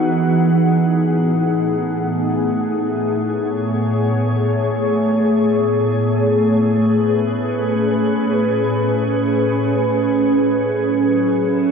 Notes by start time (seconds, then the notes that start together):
Already playing: E3 B3 D#4 G#4 F#5
1.08 A2
1.27 A3
3.11 C#5
6.61 B4
7.11 C#4
10.74 F#3
11.09 E4
11.21 A4